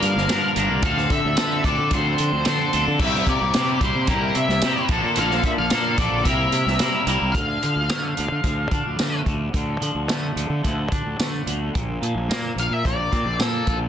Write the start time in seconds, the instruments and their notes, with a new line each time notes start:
Already playing: clean electric guitar G2 D3 F3 A#3 D4 A#4
0.00 fingered electric bass G2, lead electric guitar F5, closed hi-hat
0.16 fingered electric bass G1, snare
0.28 clean electric guitar G2 D3 F3 A#3 D4 A#4, fingered electric bass G2, snare, closed hi-hat, tambourine
0.55 fingered electric bass G1, clean electric guitar G2 D3 F3 A#3 D4 A#4, closed hi-hat
0.70 fingered electric bass C2
0.82 fingered electric bass D2, clean electric guitar D3 F3 C4 D4 A4, lead electric guitar F5, kick, closed hi-hat
0.98 snare
1.10 fingered electric bass D3, lead electric guitar E5, kick, closed hi-hat
1.25 fingered electric bass D2
1.36 clean electric guitar D3 F3 C4 D4 A4, fingered electric bass D3, snare, closed hi-hat, tambourine
1.64 fingered electric bass D2, clean electric guitar D3 F3 C4 D4 A4, lead electric guitar D5, kick, closed hi-hat
1.78 fingered electric bass D3
1.90 fingered electric bass D2, clean electric guitar D3 F3 C4 D4 A4, lead electric guitar C5, kick, closed hi-hat
2.18 fingered electric bass D3, closed hi-hat
2.32 fingered electric bass D2
2.45 clean electric guitar D3 F3 C4 D4 A4, fingered electric bass D3, lead electric guitar C5, snare, closed hi-hat, tambourine
2.73 fingered electric bass D2, clean electric guitar D3 F3 C4 D4 A4, closed hi-hat
2.87 fingered electric bass D3
2.99 fingered electric bass C2, clean electric guitar C3 G3 A#3 E4 G4, lead electric guitar E5, kick, crash
3.14 snare
3.27 fingered electric bass C3, lead electric guitar D5, kick, closed hi-hat
3.41 fingered electric bass C2
3.54 clean electric guitar C3 G3 A#3 E4 G4, fingered electric bass C3, snare, closed hi-hat, tambourine
3.80 fingered electric bass C2, clean electric guitar C3 G3 A#3 E4 G4, lead electric guitar C5, kick, closed hi-hat
3.96 fingered electric bass C3
4.07 fingered electric bass C2, clean electric guitar C3 G3 A#3 E4 G4, lead electric guitar A#4, kick, closed hi-hat
4.35 fingered electric bass C3, lead electric guitar E5, closed hi-hat
4.48 fingered electric bass C2, snare
4.62 clean electric guitar C3 G3 A#3 E4 G4, fingered electric bass C3, snare, closed hi-hat, tambourine
4.89 fingered electric bass A#1, clean electric guitar A#2 D3 F3 A#3 D4 A4, kick, closed hi-hat
5.04 fingered electric bass A#2
5.16 fingered electric bass A#1, clean electric guitar A#2 D3 F3 A#3 D4 A4, lead electric guitar F5, closed hi-hat
5.31 snare
5.43 fingered electric bass A#2, lead electric guitar E5, kick, closed hi-hat
5.58 fingered electric bass A#1, lead electric guitar F5
5.70 clean electric guitar A#2 D3 F3 A#3 D4 A4, fingered electric bass A#2, snare, closed hi-hat, tambourine
5.97 fingered electric bass A#1, clean electric guitar A#2 D3 F3 A#3 D4 A4, lead electric guitar D5, kick, closed hi-hat
6.12 fingered electric bass A#1
6.25 fingered electric bass C2, clean electric guitar C3 G3 A#3 E4 A#4, lead electric guitar E5, kick, closed hi-hat
6.52 fingered electric bass C3, closed hi-hat
6.66 fingered electric bass C2, snare
6.79 clean electric guitar C3 G3 A#3 E4 A#4, fingered electric bass C3, snare, closed hi-hat, tambourine
7.06 fingered electric bass C2, clean electric guitar C3 G3 A#3 E4 A#4, closed hi-hat
7.21 fingered electric bass C2
7.32 fingered electric bass D2, clean electric guitar D3, lead electric guitar F5, kick, closed hi-hat
7.63 fingered electric bass D3, clean electric guitar F3, closed hi-hat
7.76 fingered electric bass D2
7.89 fingered electric bass D3, clean electric guitar A3, snare, closed hi-hat, tambourine
8.17 fingered electric bass D2, clean electric guitar D3, closed hi-hat
8.31 fingered electric bass D3
8.44 fingered electric bass D2, clean electric guitar F3, kick, closed hi-hat
8.71 fingered electric bass D3, clean electric guitar D4, kick, closed hi-hat
8.87 fingered electric bass D2
8.99 fingered electric bass D3, clean electric guitar A3, snare, closed hi-hat, tambourine
9.26 fingered electric bass D2, clean electric guitar D3, kick, closed hi-hat
9.54 fingered electric bass D2, clean electric guitar D3, kick, closed hi-hat
9.81 fingered electric bass D3, clean electric guitar F3, closed hi-hat
9.95 fingered electric bass D2
10.08 fingered electric bass D3, clean electric guitar A3, snare, closed hi-hat, tambourine
10.36 fingered electric bass D2, clean electric guitar D3, closed hi-hat
10.49 fingered electric bass D3
10.64 fingered electric bass D2, clean electric guitar F3, kick, closed hi-hat
10.92 fingered electric bass D3, clean electric guitar D4, kick, closed hi-hat
11.05 fingered electric bass D2
11.19 fingered electric bass D3, clean electric guitar A3, snare, closed hi-hat, tambourine
11.46 fingered electric bass D2, clean electric guitar D3, closed hi-hat
11.74 fingered electric bass A#1, clean electric guitar A#2, kick, closed hi-hat
12.02 fingered electric bass A#2, clean electric guitar F3, closed hi-hat
12.15 fingered electric bass A#1
12.28 fingered electric bass A#2, clean electric guitar A#3, snare, closed hi-hat, tambourine
12.56 fingered electric bass A#1, clean electric guitar A#2, lead electric guitar F5, closed hi-hat
12.70 fingered electric bass A#2, lead electric guitar E5
12.85 fingered electric bass A#1, clean electric guitar F3, lead electric guitar D5, kick, closed hi-hat
13.12 fingered electric bass A#2, clean electric guitar C4, kick, closed hi-hat
13.25 fingered electric bass A#1
13.39 fingered electric bass A#2, clean electric guitar A#3, lead electric guitar A4, snare, closed hi-hat, tambourine
13.66 fingered electric bass A#1, clean electric guitar A#2, kick, closed hi-hat